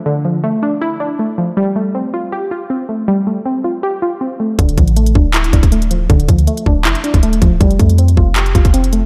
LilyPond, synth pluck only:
\new Staff \with { instrumentName = "Synth pluck" } { \time 4/4 \key d \minor \tempo 4 = 159 <d f a d' e'>8 f8 a8 d'8 e'8 d'8 a8 f8 | g8 a8 c'8 f'8 g'8 f'8 c'8 a8 | g8 a8 c'8 f'8 g'8 f'8 c'8 a8 | d8 f8 a8 d'8 e'8 d'8 a8 f8 |
d8 f8 a8 d'8 e'8 d'8 a8 f8 | g8 a8 c'8 f'8 g'8 f'8 c'8 a8 | }